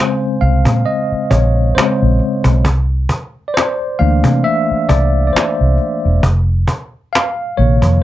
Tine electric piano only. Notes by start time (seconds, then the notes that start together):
Already playing: C#3 G#3 C4 C5 F5 G#5
0.41 F5
0.86 D#5
1.31 C#5
1.75 C#3 G#3 C4 C5
3.48 D5
3.54 C5
3.99 E3 A3 A#3 D4 F5
4.44 E5
4.89 D5
5.27 D5
5.33 C5
7.13 F5
7.57 C3 D#3 A#3 C#5